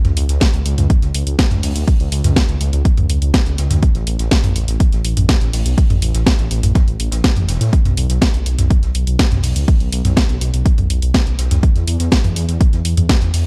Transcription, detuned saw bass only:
0.05 0.14 C#2 medium
0.17 0.26 C#2 loud
0.29 0.38 C#2 medium
0.53 0.62 C#2 medium
0.66 0.75 C#2 loud
0.78 0.87 C#2 medium
1.02 1.11 C#2 medium
1.14 1.23 C#2 loud
1.27 1.36 C#2 medium
1.51 1.60 C#2 medium
1.63 1.72 C#2 loud
1.75 1.84 D2 medium
2.00 2.09 C#2 medium
2.12 2.21 C#2 loud
2.24 2.33 C#2 loud
2.49 2.58 C#2 medium
2.61 2.70 C#2 loud
2.73 2.82 C#2 medium
2.98 3.06 C#2 medium
3.10 3.19 C#2 loud
3.22 3.31 C#2 medium
3.46 3.55 C#2 medium
3.58 3.67 C#2 loud
3.71 3.80 D2 loud
3.95 4.04 A1 medium
4.07 4.16 A1 loud
4.19 4.28 A1 medium
4.44 4.53 A1 medium
4.56 4.65 A1 loud
4.68 4.77 A1 medium
4.93 5.01 A1 medium
5.04 5.14 A1 loud
5.17 5.26 A1 medium
5.41 5.50 A1 medium
5.53 5.62 A1 loud
5.66 5.75 B1 loud
5.90 5.99 A1 medium
6.02 6.11 A1 loud
6.15 6.23 A1 loud
6.39 6.48 A1 medium
6.51 6.60 A1 loud
6.63 6.72 A1 medium
6.88 6.96 A1 medium
7.00 7.09 A1 loud
7.12 7.21 A1 medium
7.36 7.45 A1 medium
7.49 7.58 E1 loud
7.61 7.70 A2 medium
7.85 7.94 B1 medium
7.97 8.06 B1 loud
8.10 8.18 B1 medium
8.34 8.43 B1 medium
8.46 8.55 B1 loud
8.59 8.67 B1 medium
8.83 8.92 B1 medium
8.95 9.04 B1 loud
9.07 9.16 B1 loud
9.32 9.41 B1 medium
9.44 9.53 B1 loud
9.56 9.65 C#2 loud
9.80 9.89 B1 medium
9.92 10.02 B1 loud
10.05 10.14 B1 medium
10.29 10.38 B1 medium
10.41 10.50 B1 loud
10.54 10.62 B1 medium
10.78 10.87 B1 medium
10.90 10.99 B1 loud
11.02 11.11 B1 medium
11.27 11.36 B1 medium
11.39 11.48 B1 loud
11.51 11.60 C#2 medium
11.75 11.84 E2 medium
11.87 11.97 E2 loud
12.00 12.09 E2 medium
12.24 12.33 E2 medium
12.36 12.45 E2 loud
12.49 12.57 E2 medium
12.73 12.82 E2 medium
12.85 12.94 E2 loud
12.97 13.06 E2 medium
13.22 13.31 E2 medium
13.34 13.43 E2 loud

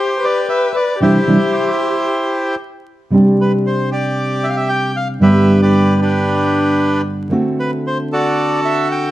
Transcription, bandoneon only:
0.00 0.72 G4 medium
0.00 0.25 C5 medium
0.25 0.48 D5 medium
0.49 0.76 E5 medium
0.76 1.00 D5 medium
1.02 2.55 E4 medium
1.02 2.55 G4 medium
1.02 2.55 C5 medium
3.41 3.52 B4 medium
3.67 3.90 C5 medium
3.92 4.92 G4 medium
3.92 4.46 D5 medium
4.44 4.49 E5 medium
4.49 4.56 F5 medium
4.57 4.69 E5 medium
4.69 4.96 G5 medium
4.96 5.08 F5 medium
5.22 5.61 G4 medium
5.22 5.61 B4 medium
5.22 5.59 E5 medium
5.62 6.01 G4 medium
5.62 6.00 B4 medium
5.62 5.98 D5 medium
6.02 7.01 D4 medium
6.02 7.02 G4 medium
6.02 7.01 B4 medium
7.60 7.71 B4 medium
7.87 7.98 C5 medium
8.13 9.11 F#4 medium
8.13 9.11 A4 medium
8.13 8.60 D5 medium
8.65 8.88 E5 medium
8.91 9.11 G5 medium

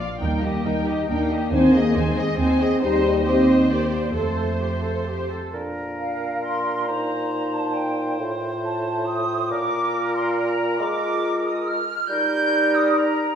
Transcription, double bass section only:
0.20 0.58 D#2 medium
0.65 1.02 D#2 soft
1.08 1.45 D#2 soft
1.51 1.88 D#2 medium
1.95 2.31 D#2 medium
2.38 2.74 D#2 medium
2.81 4.10 D#2 medium
4.15 5.30 F2 soft

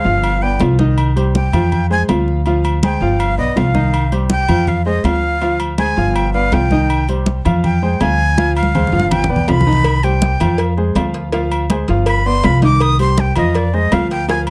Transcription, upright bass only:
0.05 0.56 G1 loud
0.60 1.47 C2 loud
1.52 2.04 F2 medium
2.08 2.95 D2 medium
3.00 3.35 G1 loud
3.37 3.55 B1 medium
3.56 4.43 C2 medium
4.48 5.00 F2 medium
5.04 5.91 D2 medium
5.97 6.48 G1 loud
6.52 7.39 C2 medium
7.45 7.96 F2 loud
8.00 8.87 D2 medium
8.92 9.27 G1 loud
9.29 9.46 B1 medium
9.48 10.34 C2 medium
10.40 10.92 F2 loud
10.95 11.82 D2 loud
11.88 12.40 G1 loud
12.44 13.30 C2 loud
13.36 13.88 F2 loud
13.91 14.50 D2 medium

